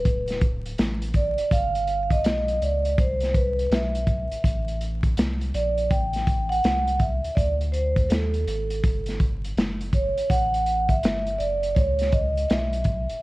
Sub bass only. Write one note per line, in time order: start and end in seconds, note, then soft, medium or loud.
0.05 0.75 D1 loud
0.79 1.35 A1 loud
1.38 1.43 G1 medium
1.51 2.21 G1 loud
2.24 2.59 B1 loud
2.61 2.96 C#2 medium
2.98 3.67 C2 loud
3.70 4.28 B1 medium
4.31 4.36 A1 medium
4.43 5.14 A1 loud
5.16 5.52 C2 medium
5.54 5.89 A#1 loud
5.91 6.60 A1 loud
6.64 7.21 C2 medium
7.24 7.29 D2 soft
7.37 8.07 D2 loud
8.10 8.45 D#2 medium
8.46 8.82 G#1 medium
8.84 9.53 G1 loud
9.56 10.13 F#1 medium
10.16 10.21 A1 medium
10.30 11.00 A1 loud
11.03 11.38 G1 medium
11.39 11.74 F#1 medium
11.76 12.46 C#2 loud
12.50 13.06 B1 medium
13.09 13.15 F#1 soft